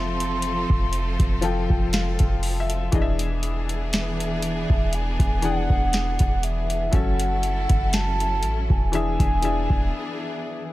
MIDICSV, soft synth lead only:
0, 0, Header, 1, 2, 480
1, 0, Start_track
1, 0, Tempo, 1000000
1, 1405, Time_signature, 4, 2, 24, 8
1, 5149, End_track
2, 0, Start_track
2, 0, Title_t, "Soft synth lead"
2, 0, Program_c, 0, 80
2, 0, Note_on_c, 0, 84, 121
2, 1149, Note_off_c, 0, 84, 0
2, 1892, Note_on_c, 0, 76, 90
2, 2373, Note_on_c, 0, 80, 101
2, 2380, Note_off_c, 0, 76, 0
2, 2609, Note_off_c, 0, 80, 0
2, 2612, Note_on_c, 0, 78, 112
2, 3091, Note_on_c, 0, 76, 100
2, 3098, Note_off_c, 0, 78, 0
2, 3331, Note_on_c, 0, 78, 113
2, 3338, Note_off_c, 0, 76, 0
2, 3810, Note_on_c, 0, 81, 114
2, 3818, Note_off_c, 0, 78, 0
2, 4178, Note_off_c, 0, 81, 0
2, 4182, Note_on_c, 0, 80, 112
2, 4990, Note_off_c, 0, 80, 0
2, 5149, End_track
0, 0, End_of_file